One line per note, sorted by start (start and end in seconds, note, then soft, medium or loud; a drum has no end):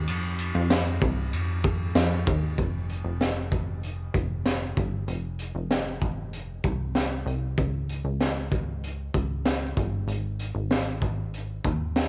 0.08 0.53 F2 loud
0.08 ride medium
0.39 ride soft
0.55 0.99 F2 loud
0.70 snare loud
0.70 ride medium
0.70 tambourine medium
1.01 1.34 C2 medium
1.01 kick medium
1.01 ride soft
1.33 1.92 F2 loud
1.33 ride medium
1.64 kick loud
1.64 ride medium
1.95 2.25 F2 medium
1.95 snare loud
1.95 ride medium
1.95 tambourine medium
2.27 2.57 D#2 loud
2.27 kick medium
2.27 ride soft
2.58 3.03 F1 medium
2.58 kick loud
2.58 closed hi-hat medium
2.89 closed hi-hat medium
3.05 4.10 F1 medium
3.21 snare medium
3.21 closed hi-hat medium
3.51 kick medium
3.51 closed hi-hat soft
3.83 closed hi-hat medium
4.14 4.73 F1 medium
4.14 kick medium
4.14 closed hi-hat medium
4.45 snare medium
4.45 closed hi-hat medium
4.77 5.07 G1 loud
4.77 kick medium
4.77 closed hi-hat soft
5.08 5.52 F1 medium
5.08 closed hi-hat medium
5.39 closed hi-hat medium
5.55 6.60 F1 medium
5.71 snare medium
5.71 closed hi-hat medium
6.01 kick medium
6.01 closed hi-hat soft
6.33 closed hi-hat medium
6.64 7.23 C2 medium
6.64 kick medium
6.64 closed hi-hat soft
6.95 snare loud
6.95 closed hi-hat medium
7.26 7.56 C2 medium
7.26 closed hi-hat soft
7.58 8.02 C#2 medium
7.58 kick medium
7.58 closed hi-hat medium
7.89 closed hi-hat medium
8.05 9.10 C#2 medium
8.20 snare medium
8.20 closed hi-hat medium
8.52 kick medium
8.52 closed hi-hat soft
8.84 closed hi-hat medium
9.14 9.74 C#2 medium
9.14 kick medium
9.14 closed hi-hat soft
9.45 snare loud
9.45 closed hi-hat medium
9.77 10.07 G1 loud
9.77 kick medium
9.77 closed hi-hat soft
10.08 10.52 G#1 medium
10.08 closed hi-hat medium
10.39 closed hi-hat medium
10.55 11.60 G#1 medium
10.71 snare loud
10.71 closed hi-hat soft
11.02 kick medium
11.02 closed hi-hat soft
11.34 closed hi-hat medium
11.64 12.08 D#2 medium
11.64 kick medium
11.64 closed hi-hat soft
11.96 snare loud
11.96 closed hi-hat medium